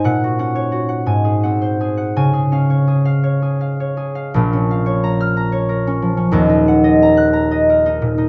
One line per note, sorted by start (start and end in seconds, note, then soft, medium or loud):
0.04 1.11 A#2 medium
0.04 0.38 F#5 medium
0.24 0.71 F#4 soft
0.39 1.12 C#4 soft
0.39 0.88 F#5 soft
0.55 1.11 C#5 soft
0.72 2.17 F#4 soft
0.89 1.42 F#5 soft
1.06 2.17 G#2 soft
1.06 2.15 G#5 medium
1.25 1.79 G#4 soft
1.43 2.19 C4 soft
1.43 1.96 F#5 soft
1.62 2.18 C5 soft
1.81 2.32 G#4 soft
1.97 2.18 F#5 soft
2.16 4.40 C#3 soft
2.16 4.40 G#5 medium
2.33 2.86 G#4 soft
2.52 4.52 C#4 soft
2.52 3.04 F5 soft
2.70 3.22 C#5 soft
2.88 3.41 G#4 soft
3.05 3.60 F5 soft
3.24 3.79 C#5 soft
3.42 3.96 G#4 soft
3.61 4.14 F5 soft
3.80 4.85 C#5 soft
3.97 4.38 G#4 soft
4.15 4.70 F5 soft
4.34 6.39 A#1 medium
4.34 6.39 A#2 medium
4.53 5.86 C#4 soft
4.71 6.40 F5 soft
4.86 5.51 C#5 medium
5.04 5.36 A#5 medium
5.21 6.39 F6 medium
5.37 7.01 A#5 soft
5.52 6.38 C#5 medium
5.69 7.68 A#4 soft
5.87 6.16 C#4 medium
6.02 6.39 F3 soft
6.17 6.38 C#4 soft
6.32 8.29 D#1 medium
6.32 8.29 D#2 medium
6.49 7.85 D#4 soft
6.68 8.29 F#5 medium
6.84 7.50 D#5 medium
7.03 7.32 A#5 medium
7.17 8.29 F#6 medium
7.33 8.29 A#5 medium
7.51 8.29 D#5 medium
7.70 8.29 A#4 soft
7.86 8.17 D#4 medium
8.02 8.29 A#2 medium
8.18 8.29 D#4 soft